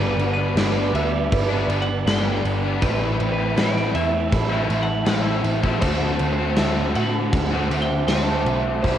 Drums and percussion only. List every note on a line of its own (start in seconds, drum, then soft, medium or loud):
0.19 crash medium
0.57 snare loud
0.57 crash loud
0.95 crash medium
1.32 kick loud
1.32 crash medium
1.70 crash medium
2.07 snare loud
2.07 crash medium
2.45 crash medium
2.82 kick loud
2.82 crash medium
3.20 crash medium
3.57 snare loud
3.57 crash medium
3.76 snare soft
3.95 crash medium
4.32 kick loud
4.32 crash medium
4.70 crash medium
5.06 snare loud
5.06 crash medium
5.44 crash medium
5.63 kick medium
5.81 kick loud
5.81 crash loud
6.19 crash medium
6.56 snare loud
6.56 crash medium
6.95 crash medium
7.33 kick loud
7.33 crash medium
7.71 crash medium
8.08 snare loud
8.08 crash medium
8.46 crash medium
8.84 kick loud
8.84 crash medium